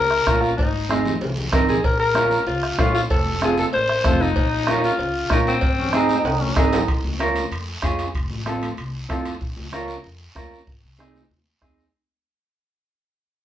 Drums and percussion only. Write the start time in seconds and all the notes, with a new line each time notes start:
0.11 bombo rim
0.27 bombo low, bombo rim, cowbell, high conga, short guiro
0.42 short guiro
0.58 bombo low, cowbell, high conga, long guiro
0.89 bombo rim, cowbell, high conga, short guiro
1.05 low conga, short guiro
1.21 cowbell, low conga, long guiro
1.37 low conga
1.52 bombo low, bombo rim, cowbell, low conga, low timbale, short guiro
1.67 low conga, short guiro
1.84 bombo low, cowbell, high conga, long guiro
2.15 bombo rim, cowbell, high conga, short guiro
2.31 short guiro
2.47 cowbell, long guiro
2.63 bombo rim
2.78 bombo low, bombo rim, cowbell, high conga, low timbale, short guiro
2.95 short guiro
3.09 bombo low, cowbell, high conga, long guiro
3.26 high conga
3.42 bombo rim, cowbell, high conga, short guiro
3.58 high conga, short guiro
3.72 cowbell, high conga, long guiro
3.89 bombo rim
4.04 bombo low, bombo rim, cowbell, high conga, low conga, short guiro
4.21 short guiro
4.36 bombo low, cowbell, high conga, long guiro
4.67 bombo rim, cowbell, high conga, short guiro
4.84 short guiro
4.99 cowbell, high conga, long guiro
5.30 bombo low, bombo rim, cowbell, high conga, short guiro
5.47 short guiro
5.61 bombo low, cowbell, high conga, long guiro
5.79 low conga
5.93 bombo rim, cowbell, high conga, short guiro
6.09 high conga, short guiro
6.25 cowbell, high conga, high timbale, long guiro
6.41 high conga
6.56 bombo low, bombo rim, cowbell, low timbale, short guiro
6.73 low conga, low timbale, short guiro
6.88 bombo low, high conga, high timbale, long guiro
7.05 high conga
7.19 bombo rim, high conga, high timbale, short guiro
7.35 high conga, high timbale, short guiro
7.51 high conga, high timbale, long guiro
7.82 bombo low, bombo rim, high conga, high timbale, short guiro
7.99 high timbale, short guiro
8.15 bombo low, high conga, high timbale, long guiro
8.30 high conga
8.46 bombo rim, high conga, high timbale, short guiro
8.62 high conga, high timbale, short guiro
8.77 high conga, high timbale, long guiro
9.10 bombo low, bombo rim, high conga, high timbale, low timbale, short guiro
9.25 high timbale, short guiro
9.41 bombo low, high conga, long guiro
9.57 high conga
9.73 bombo rim, high conga, short guiro
9.88 short guiro
10.04 high conga, long guiro
10.36 bombo low, bombo rim, high conga, short guiro
10.52 short guiro
10.67 bombo low, high conga, long guiro
10.99 bombo rim, high conga, short guiro
11.14 high conga, short guiro
11.30 high conga, long guiro
11.62 bombo low, bombo rim, high conga, short guiro
11.78 short guiro